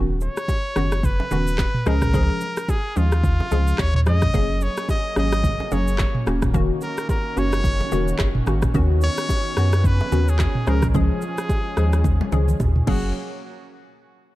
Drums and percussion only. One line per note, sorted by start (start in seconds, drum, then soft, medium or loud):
0.21 low bongo medium
0.21 shaker medium
0.37 cross-stick loud
0.37 shaker medium
0.48 kick medium
0.48 high bongo medium
0.48 shaker medium
0.76 cross-stick loud
0.76 high bongo medium
0.76 shaker medium
0.92 cross-stick loud
0.92 high bongo medium
0.92 shaker medium
1.03 kick loud
1.03 low conga medium
1.03 shaker medium
1.20 low bongo medium
1.31 low bongo medium
1.31 low conga medium
1.31 shaker medium
1.47 shaker medium
1.58 kick loud
1.58 cross-stick medium
1.58 clap loud
1.58 high bongo medium
1.58 shaker medium
1.74 mid tom loud
1.86 cross-stick loud
1.86 shaker soft
2.02 kick loud
2.02 cross-stick loud
2.02 mid tom medium
2.02 shaker medium
2.14 kick loud
2.14 low conga medium
2.14 shaker medium
2.41 low bongo medium
2.41 shaker medium
2.57 cross-stick loud
2.57 shaker medium
2.69 kick loud
2.69 high bongo medium
2.69 shaker medium
2.96 high bongo medium
2.96 shaker medium
3.12 cross-stick loud
3.12 high bongo medium
3.12 shaker medium
3.24 kick loud
3.24 low conga medium
3.24 shaker medium
3.40 low bongo medium
3.51 low bongo medium
3.51 low conga medium
3.51 shaker medium
3.68 shaker medium
3.78 kick loud
3.78 cross-stick medium
3.78 clap medium
3.78 high bongo medium
3.78 shaker medium
3.94 mid tom loud
4.06 cross-stick loud
4.06 shaker soft
4.22 kick loud
4.22 cross-stick loud
4.22 mid tom medium
4.22 shaker medium
4.34 kick loud
4.34 low conga medium
4.34 shaker medium
4.61 low bongo medium
4.61 shaker medium
4.77 cross-stick loud
4.77 shaker medium
4.89 kick loud
4.89 high bongo medium
4.89 shaker medium
5.16 cross-stick loud
5.16 high bongo medium
5.16 shaker medium
5.32 cross-stick loud
5.32 high bongo medium
5.32 shaker medium
5.44 kick loud
5.44 low conga medium
5.44 shaker medium
5.60 low bongo medium
5.72 low bongo medium
5.72 low conga medium
5.72 shaker medium
5.88 shaker medium
5.98 kick loud
5.98 cross-stick medium
5.98 clap medium
5.98 high bongo medium
5.98 shaker medium
6.15 mid tom loud
6.27 cross-stick loud
6.27 shaker soft
6.42 kick loud
6.42 cross-stick loud
6.42 mid tom loud
6.42 shaker medium
6.54 kick loud
6.54 low conga medium
6.54 shaker medium
6.81 low bongo medium
6.81 shaker medium
6.98 cross-stick loud
6.98 shaker medium
7.09 kick medium
7.09 high bongo medium
7.09 shaker medium
7.37 high bongo medium
7.37 shaker medium
7.53 cross-stick loud
7.53 high bongo medium
7.53 shaker medium
7.64 kick loud
7.64 low conga medium
7.64 shaker medium
7.81 low bongo medium
7.92 low bongo medium
7.92 low conga medium
7.92 shaker medium
8.08 shaker medium
8.19 kick loud
8.19 cross-stick medium
8.19 clap medium
8.19 high bongo medium
8.19 shaker medium
8.35 mid tom loud
8.47 cross-stick loud
8.47 shaker soft
8.62 kick loud
8.62 cross-stick loud
8.62 mid tom medium
8.62 shaker medium
8.74 kick loud
8.74 low conga medium
8.74 shaker medium
9.01 low bongo medium
9.01 shaker medium
9.18 cross-stick loud
9.18 shaker medium
9.29 kick medium
9.29 high bongo medium
9.29 shaker medium
9.57 cross-stick loud
9.57 high bongo medium
9.57 shaker medium
9.73 cross-stick loud
9.73 high bongo medium
9.73 shaker medium
9.84 kick loud
9.84 low conga medium
9.84 shaker medium
10.01 low bongo medium
10.12 low bongo medium
10.12 low conga medium
10.12 shaker medium
10.28 shaker medium
10.39 kick loud
10.39 cross-stick medium
10.39 clap medium
10.39 high bongo medium
10.39 shaker medium
10.55 mid tom medium
10.67 cross-stick loud
10.67 shaker soft
10.82 kick loud
10.82 cross-stick medium
10.82 mid tom loud
10.82 shaker medium
10.95 kick loud
10.95 low conga medium
10.95 shaker medium
11.22 low bongo medium
11.22 shaker medium
11.38 cross-stick loud
11.38 shaker medium
11.49 kick loud
11.49 high bongo medium
11.49 shaker medium
11.77 cross-stick loud
11.77 high bongo medium
11.77 shaker medium
11.93 cross-stick loud
11.93 high bongo medium
11.93 shaker medium
12.04 kick loud
12.04 high tom medium
12.04 low conga medium
12.04 shaker medium
12.21 high tom medium
12.21 low bongo medium
12.32 mid tom medium
12.32 low bongo medium
12.32 low conga medium
12.32 shaker medium
12.48 mid tom medium
12.48 shaker medium
12.60 kick loud
12.60 mid tom medium
12.60 high bongo medium
12.60 shaker medium
12.76 mid tom medium
12.87 kick loud
12.87 crash medium
12.87 low conga medium